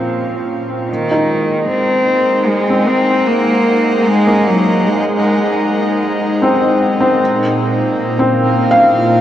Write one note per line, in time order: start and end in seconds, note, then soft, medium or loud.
0.00 0.88 A#2 medium
0.00 3.42 A#3 medium
0.00 1.22 C4 medium
0.00 0.91 C#4 medium
0.00 0.89 F4 medium
0.00 0.89 F5 medium
0.00 0.90 C#6 medium
0.88 1.63 D#3 medium
0.88 7.20 G#3 medium
1.11 2.85 D#4 medium
1.36 8.43 A#4 medium
1.68 2.48 C4 medium
1.77 9.21 D#4 medium
1.87 7.20 C5 medium
2.47 2.89 G#3 medium
2.60 7.20 F#5 medium
2.70 4.43 C4 medium
2.87 3.28 C4 medium
3.27 3.98 A#3 medium
3.98 4.09 A#3 medium
4.07 4.49 G#3 medium
4.27 5.98 A#3 soft
4.47 4.88 F#3 medium
4.87 6.03 G#3 medium
6.42 6.99 C4 medium
7.01 8.18 C4 medium
7.22 9.21 A#2 medium
7.88 9.21 A#3 medium
8.06 9.21 F5 medium
8.19 9.21 C4 medium
8.64 9.21 F4 medium
8.71 9.21 F5 medium
9.12 9.21 A#4 medium